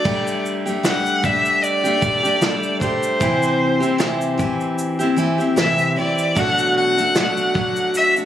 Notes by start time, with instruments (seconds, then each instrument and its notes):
Already playing: violin D5
0.04 steel-string acoustic guitar G3 A3 D4 G4, kick, crash
0.27 shaker
0.46 shaker
0.66 steel-string acoustic guitar A3 D4 G4, shaker
0.83 steel-string acoustic guitar G3 A3 D4 G4, violin F#5, snare, shaker
1.06 shaker
1.22 steel-string acoustic guitar G3 A3 D4 G4, violin E5, kick, shaker
1.45 shaker
1.63 violin D5, shaker
1.84 steel-string acoustic guitar A3 D4 G4, shaker
2.01 steel-string acoustic guitar G3 A3 D4 G4, kick, shaker
2.23 steel-string acoustic guitar A3 D4 G4, shaker
2.41 steel-string acoustic guitar G3 A3 D4 G4, snare, shaker
2.63 shaker
2.80 steel-string acoustic guitar G3 A3 D4 G4, violin C5, kick, shaker
3.03 shaker
3.20 steel-string acoustic guitar C3 E3 C4 E4 G4, kick, shaker
3.43 shaker
3.80 steel-string acoustic guitar C4 E4 G4, shaker
3.98 steel-string acoustic guitar C3 E3 C4 E4 G4, snare, shaker
4.21 shaker
4.38 steel-string acoustic guitar E3 C4 E4 G4, kick, shaker
4.61 shaker
4.78 shaker
4.99 steel-string acoustic guitar C4 E4 G4, shaker
5.16 steel-string acoustic guitar E3 C4 E4 G4, shaker
5.38 steel-string acoustic guitar C4 E4 G4, shaker
5.56 steel-string acoustic guitar C3 E3 C4 E4 G4, violin E5, snare, shaker
5.78 shaker
5.96 steel-string acoustic guitar E3 C4 E4 G4, violin D5
6.18 shaker
6.35 steel-string acoustic guitar B2 F#3 A3 D4 F#4, violin F#5, kick, shaker
6.58 shaker
6.77 violin F#5
6.96 steel-string acoustic guitar A3 D4 F#4, shaker
7.15 steel-string acoustic guitar B2 F#3 A3 D4 F#4, snare, shaker
7.37 shaker
7.54 steel-string acoustic guitar F#3 A3 D4 F#4, kick
7.76 shaker
7.94 violin E5, shaker
8.16 steel-string acoustic guitar A3 D4 F#4, shaker